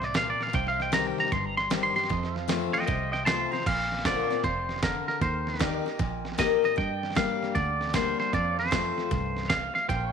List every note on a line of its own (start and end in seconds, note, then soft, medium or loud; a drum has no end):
0.00 0.34 C2 medium
0.00 0.13 A2 medium
0.00 0.53 C5 medium
0.00 0.16 D5 medium
0.00 0.54 F5 medium
0.00 snare soft
0.14 0.52 A#2 medium
0.14 0.29 F5 medium
0.14 snare loud
0.14 hi-hat pedal medium
0.30 0.43 D5 medium
0.41 0.54 F5 medium
0.41 snare soft
0.47 snare soft
0.53 1.12 C2 loud
0.53 1.29 C3 medium
0.53 2.09 C5 medium
0.53 0.81 F5 medium
0.53 0.67 G5 loud
0.53 kick loud
0.53 snare soft
0.67 0.80 F5 loud
0.67 snare soft
0.80 2.09 D#5 medium
0.80 0.94 G5 medium
0.80 snare soft
0.92 1.30 D#3 medium
0.92 1.30 G3 medium
0.92 1.31 C4 loud
0.92 1.31 G4 loud
0.92 1.07 A#5 loud
0.92 snare loud
0.92 hi-hat pedal medium
1.07 1.19 G5 medium
1.18 1.32 A#5 medium
1.18 snare soft
1.25 snare soft
1.32 1.90 G1 medium
1.32 2.07 G2 medium
1.32 1.45 C6 medium
1.32 kick loud
1.32 snare soft
1.45 1.57 A#5 loud
1.57 1.70 C6 medium
1.57 snare soft
1.70 1.95 D#3 medium
1.70 1.95 G3 medium
1.70 1.96 C4 loud
1.70 1.95 G4 loud
1.70 snare loud
1.70 hi-hat pedal medium
1.83 1.95 C6 medium
1.96 2.10 C4 medium
1.96 2.09 G4 medium
1.96 2.34 C6 loud
1.96 snare soft
2.04 snare soft
2.09 2.85 F2 medium
2.09 2.68 F2 loud
2.09 3.65 C5 medium
2.09 2.37 D#5 medium
2.09 kick loud
2.09 snare soft
2.23 snare soft
2.36 3.65 F5 medium
2.36 snare soft
2.48 2.73 F3 medium
2.48 2.73 A3 loud
2.48 2.74 C4 loud
2.48 2.73 F4 medium
2.48 snare loud
2.48 hi-hat pedal medium
2.73 2.88 C4 soft
2.73 2.87 F4 medium
2.73 2.85 D#5 medium
2.73 2.86 G5 medium
2.73 snare soft
2.82 snare soft
2.86 3.46 C2 medium
2.86 3.63 C3 medium
2.86 3.11 D#5 medium
2.86 3.12 G5 medium
2.86 kick loud
2.86 snare soft
3.12 3.25 D#5 medium
3.12 3.26 G5 medium
3.12 snare soft
3.25 3.51 F3 medium
3.25 3.51 A3 medium
3.25 3.52 C4 medium
3.25 3.51 F4 medium
3.25 3.34 C5 medium
3.25 3.50 A5 medium
3.25 3.51 C6 loud
3.25 snare loud
3.25 hi-hat pedal medium
3.51 3.66 C4 soft
3.51 3.65 F4 medium
3.51 3.65 C5 medium
3.51 3.65 A#5 medium
3.51 snare soft
3.60 snare soft
3.66 4.24 A#1 medium
3.66 4.42 A#2 medium
3.66 4.06 F5 loud
3.66 kick loud
3.66 snare soft
3.66 crash medium
3.92 snare soft
3.99 snare soft
4.05 4.29 D3 medium
4.05 4.30 A#3 medium
4.05 4.30 C4 loud
4.05 4.29 F4 loud
4.05 4.31 C5 medium
4.05 4.42 D5 medium
4.05 5.21 F5 medium
4.05 kick loud
4.05 snare loud
4.05 hi-hat pedal medium
4.30 4.44 C4 medium
4.30 4.43 F4 medium
4.30 5.21 D5 medium
4.30 snare soft
4.44 5.02 F1 medium
4.44 4.82 C3 medium
4.44 4.80 C5 loud
4.44 kick loud
4.44 snare soft
4.69 snare soft
4.76 snare soft
4.83 5.20 D3 medium
4.83 5.07 A#4 medium
4.83 kick loud
4.83 snare loud
4.83 hi-hat pedal medium
5.08 5.22 A#4 medium
5.08 snare soft
5.21 5.79 D#2 loud
5.21 5.58 D#3 medium
5.21 5.48 C5 medium
5.21 kick loud
5.21 snare soft
5.47 6.42 A#4 medium
5.47 snare soft
5.54 snare soft
5.59 5.84 D#3 loud
5.59 5.85 A#3 medium
5.59 5.85 D#4 medium
5.59 5.85 G4 loud
5.59 5.80 D5 medium
5.59 6.76 G5 medium
5.59 kick medium
5.59 snare loud
5.59 hi-hat pedal loud
5.80 6.76 D#5 medium
5.86 6.00 D#4 soft
5.86 5.99 G4 medium
5.86 snare soft
5.99 6.57 A#1 medium
5.99 6.75 A#2 medium
5.99 kick loud
5.99 snare soft
6.25 snare soft
6.32 snare soft
6.38 6.63 D#3 medium
6.38 6.63 A#3 loud
6.38 6.63 D#4 loud
6.38 6.62 G4 loud
6.38 6.64 D#5 loud
6.38 kick loud
6.38 snare loud
6.38 hi-hat pedal medium
6.63 6.77 D#4 soft
6.63 6.76 G4 medium
6.63 6.77 D#5 loud
6.63 snare soft
6.76 7.52 G2 medium
6.76 7.36 G2 loud
6.76 6.97 D#5 medium
6.76 7.16 G5 loud
6.76 8.32 G5 medium
6.76 kick loud
6.76 snare soft
6.97 8.31 D5 medium
7.03 snare soft
7.10 snare soft
7.15 7.53 G3 medium
7.15 7.54 A#3 loud
7.15 7.54 D4 medium
7.15 7.55 G4 loud
7.15 7.57 F5 medium
7.15 kick loud
7.15 snare loud
7.15 hi-hat pedal medium
7.42 snare soft
7.55 8.13 D2 medium
7.55 8.31 D3 medium
7.55 7.95 D5 medium
7.55 kick loud
7.55 snare soft
7.81 snare soft
7.87 snare soft
7.93 8.31 G3 medium
7.93 8.32 A#3 medium
7.93 8.32 D4 loud
7.93 8.32 G4 medium
7.93 8.19 C5 medium
7.93 kick medium
7.93 snare loud
7.93 hi-hat pedal medium
8.20 8.34 C5 medium
8.20 snare soft
8.33 8.91 F2 loud
8.33 9.09 F2 medium
8.33 8.58 D5 medium
8.33 8.59 D5 loud
8.33 9.88 F5 medium
8.33 kick loud
8.33 snare soft
8.58 9.87 C5 medium
8.58 9.53 C5 medium
8.58 snare soft
8.66 snare soft
8.71 9.09 F3 medium
8.71 9.10 A3 medium
8.71 9.10 C4 medium
8.71 9.10 F4 loud
8.71 kick loud
8.71 snare loud
8.71 hi-hat pedal loud
8.98 snare soft
9.11 9.69 C2 medium
9.11 9.49 G2 medium
9.11 kick loud
9.11 snare soft
9.36 snare soft
9.43 snare soft
9.50 9.88 A2 medium
9.50 9.74 F5 loud
9.50 kick medium
9.50 snare loud
9.50 hi-hat pedal medium
9.75 9.89 F5 medium
9.75 snare soft
9.89 10.12 A#1 medium
9.89 10.12 A#2 loud
9.89 10.12 C5 medium
9.89 10.12 F5 medium
9.89 10.12 G5 loud
9.89 kick loud
9.89 snare soft